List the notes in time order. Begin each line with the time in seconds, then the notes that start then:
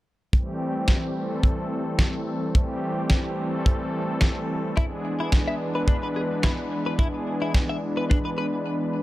0.31 E3 G3 A3 C4 G4, kick
0.88 kick, snare
1.15 E3 G3 A3 C4 A4
1.43 kick
1.99 kick, snare
2.53 E3 G3 A3 C4 G4, kick
3.10 kick, snare
3.37 E3 G3 A3 C4 A4
3.66 kick
4.21 kick, snare
4.76 E3 G#3 B3 D4 E4 G#4, kick
5.20 E4
5.32 kick, snare
5.48 E5
5.60 E3 G#3 B3 D4 B4
5.75 B4
5.88 D4, kick
6.03 B4
6.16 G#4
6.43 E4, kick, snare
6.86 B4
6.98 E3 G#3 B3 D4 E4 G#4, kick
7.42 E4
7.54 kick, snare
7.69 E5
7.81 E3 G#3 B3 D4 B4
7.97 B4
8.10 D4, kick
8.25 B4
8.38 B4